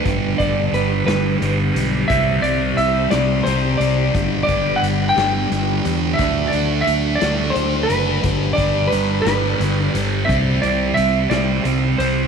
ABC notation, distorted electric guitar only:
X:1
M:6/8
L:1/8
Q:3/8=59
K:G
V:1 name="Distorted electric guitar" clef=bass
[G,,D,G,] [D,G,]2 [G,,D,G,] [G,,D,G,] [D,G,] | [C,G,C] [G,C]2 [C,G,C] [C,G,C] [G,C] | [G,,D,G,] [D,G,]2 [G,,D,G,] [G,,D,G,] [D,G,] | [D,A,D] [A,D]2 [D,A,D] [D,A,D] [A,D] |
[G,,D,G,] [D,G,]2 [G,,D,G,] [G,,D,G,] [D,G,] | [C,G,C] [G,C]2 [C,G,C] [C,G,C] [G,C] |]